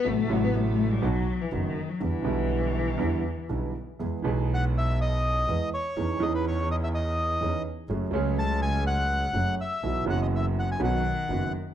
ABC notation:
X:1
M:4/4
L:1/16
Q:1/4=123
K:Em
V:1 name="Bandoneon"
z16 | z16 | [K:E] z4 f2 e2 d6 c2- | c2 d B c2 d e d6 z2 |
z4 a2 g2 f6 e2- | e2 f d e2 f g f6 z2 |]
V:2 name="Cello" clef=bass
A,3 B, A,3 G, F,3 E, ^D,3 F, | E,12- E,2 z2 | [K:E] z16 | z16 |
z16 | z8 D,6 z2 |]
V:3 name="Grand piano" clef=bass
[A,,,A,,C,F,A,F]2 [A,,,A,,C,F,A,F]6 [B,,,B,,^D,F,B,F]2 z2 [F,,,F,,D,F,B,F]2 z2 | [E,,D,E,G,B,E]2 [B,,,B,,D,G,B,E]6 [E,,D,E,G,B,E]2 z2 [B,,,B,,D,G,B,E]2 z2 | [K:E] [E,,E,G,B,G]2 [B,,,B,,E,G,B,G]8- [B,,,B,,E,G,B,G]2 [E,,E,G,B,G]2 z2 | [E,,E,CDG]2 [E,,E,CDG]8- [E,,E,CDG]2 [E,,E,CDG]2 z2 |
[F,,F,A,CG]2 [C,,C,F,A,CG]8- [C,,C,F,A,CG]2 [F,,F,A,CG]2 z2 | [B,,,B,,E,F,B,F]2 [F,,,F,,E,F,B,F]6 [B,,,B,,D,F,B,F]2 z2 [F,,,F,,D,F,B,F]2 z2 |]
V:4 name="Double bass" clef=bass
A,,,2 A,,,6 B,,,2 z2 F,,,2 z2 | E,,2 B,,,6 E,,2 z2 B,,,2 z2 | [K:E] E,,2 B,,,8- B,,,2 E,,2 z2 | E,,2 E,,8- E,,2 E,,2 z2 |
F,,,2 C,,8- C,,2 F,,,2 z2 | B,,,2 F,,,6 B,,,2 z2 F,,,2 z2 |]